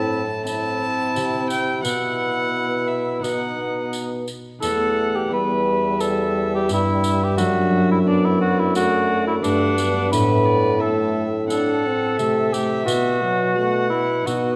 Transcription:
Already playing: bassoon A2, harp A2 A3 C4 E4 E5, trombone C4, cor anglais E4, violin A5
0.44 harp C4 E4 E5, trombone C4, cor anglais E4, violin A5, tambourine
1.15 bassoon C3, harp C3, tambourine
1.50 violin G5, tambourine
1.81 bassoon B2, harp B2 B3 E4 B4, cor anglais E4, violin F#5
1.85 trombone B3, tambourine
2.88 violin E5
3.19 harp B3 D#4 B4, violin F#5
3.23 harp B2, bassoon B2, trombone B3, cor anglais D#4, tambourine
3.93 tambourine
4.28 tambourine
4.59 harp E2 B3 E4 G4, trombone A3, cor anglais A4, violin F#5, tambourine
4.63 bassoon E2
5.16 cor anglais G4
5.28 trombone G3, harp B3 E4 G4
5.32 cor anglais B4, violin E5
5.66 violin E5
6.00 cor anglais A4, tambourine
6.55 cor anglais G4
6.69 harp G2, bassoon G2, cor anglais E4, tambourine
7.04 tambourine
7.24 cor anglais G4
7.35 bassoon F#2, harp F#3 A3 D4 F#4, cor anglais F#4, tambourine
7.91 cor anglais E4
8.06 trombone B3, cor anglais D4, violin D5
8.25 cor anglais E4
8.41 cor anglais F#4
8.59 cor anglais E4
8.75 trombone A3, cor anglais F#4, violin D5, tambourine
9.27 cor anglais E4
9.40 bassoon G2, harp G2 A3 D4 F#4, trombone A3, cor anglais D4, violin F#5, tambourine
9.78 trombone B3, tambourine
10.10 harp A2 C4 E4, bassoon A2, cor anglais B4, violin E5, tambourine
10.45 violin D5
10.78 harp C4 E4, cor anglais A4, violin E5
10.83 trombone A3
11.46 harp C4 E4, violin F#5
11.50 trombone D4, cor anglais A4, tambourine
11.86 trombone C4
12.17 bassoon C3, harp C3, trombone A3, violin E5, tambourine
12.53 trombone A3, cor anglais G4, tambourine
12.83 harp B2 B3 E4, cor anglais F#4
12.87 bassoon B2, trombone B3, tambourine
13.22 trombone F#3
13.55 trombone A3, violin F#5
13.90 trombone B3, cor anglais E4
14.23 harp B2 B3 D#4 F#4, bassoon B2, cor anglais F#4, violin D#5
14.27 trombone B3, tambourine

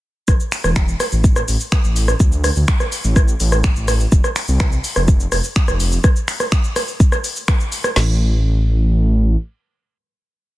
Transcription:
0.28 detuned saw bass A1, kick, cross-stick, shaker
0.40 shaker
0.52 finger snap, open hi-hat, shaker
0.64 detuned saw bass E1, cross-stick, shaker
0.76 finger snap, kick, shaker
0.88 shaker
1.00 cross-stick, open hi-hat, shaker
1.12 detuned saw bass A1, shaker
1.24 kick, shaker
1.36 cross-stick, shaker
1.48 detuned saw bass A1, open hi-hat, shaker
1.60 shaker
1.72 finger snap, kick, cross-stick, shaker
1.84 detuned saw bass A1, shaker
1.96 open hi-hat, shaker
2.08 cross-stick, shaker
2.20 detuned saw bass D2, kick, shaker
2.32 shaker
2.44 cross-stick, open hi-hat, shaker
2.56 detuned saw bass D2, shaker
2.68 finger snap, kick, shaker
2.80 cross-stick, shaker
2.92 open hi-hat, shaker
3.04 detuned saw bass A1, shaker
3.16 kick, cross-stick, shaker
3.28 shaker
3.40 detuned saw bass A1, open hi-hat, shaker
3.52 cross-stick, shaker
3.64 finger snap, kick, shaker
3.76 detuned saw bass A1, shaker
3.88 cross-stick, open hi-hat, shaker
4.00 shaker
4.12 detuned saw bass F1, kick, shaker
4.24 cross-stick, shaker
4.36 finger snap, open hi-hat, shaker
4.48 detuned saw bass C2, shaker
4.60 finger snap, kick, cross-stick, shaker
4.72 shaker
4.84 open hi-hat, shaker
4.96 detuned saw bass F1, cross-stick, shaker
5.08 kick, shaker
5.20 shaker
5.32 detuned saw bass F1, cross-stick, open hi-hat, shaker
5.44 shaker
5.56 finger snap, kick, shaker
5.68 detuned saw bass F1, cross-stick, shaker
5.80 open hi-hat, shaker
5.92 shaker
6.04 kick, cross-stick, shaker
6.16 shaker
6.28 finger snap, open hi-hat, shaker
6.40 cross-stick, shaker
6.52 finger snap, kick, shaker
6.64 shaker
6.76 cross-stick, open hi-hat, shaker
6.88 shaker
7.00 kick, shaker
7.12 cross-stick, shaker
7.24 open hi-hat, shaker
7.36 shaker
7.48 finger snap, kick, cross-stick, shaker
7.60 shaker
7.72 open hi-hat, shaker
7.84 cross-stick, shaker
7.96 detuned saw bass A1, snare, crash

